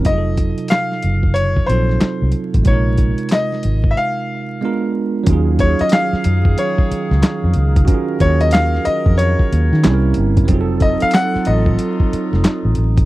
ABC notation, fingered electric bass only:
X:1
M:4/4
L:1/16
Q:"Swing 16ths" 1/4=92
K:Ebdor
V:1 name="Fingered electric bass" clef=bass
F,,,3 z3 G,,,4 B,,,2 z C,, z =A,,, | B,,,3 z3 A,,,2 z8 | E,,3 z3 G,,2 z3 D,, z F,, D,,2 | z2 E,,4 z F,,2 z E,, E, C,,2 =G,,,2 |
F,,,3 z3 =A,,,2 z3 F,,, z A,,, A,,,2 |]